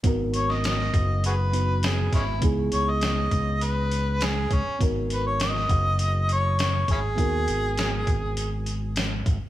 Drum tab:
HH |x-x-x-x-x-x-x-x-|x-x-x-x-x-x-x-x-|x-x-x-x-x-x-x-x-|x-x-x-x-x-x-x-x-|
SD |---ooo------o-o-|----o-------o---|----oo------o---|----o-------o---|
BD |o-----o-------o-|o-----o-------o-|o-----o-------o-|o-----o-------o-|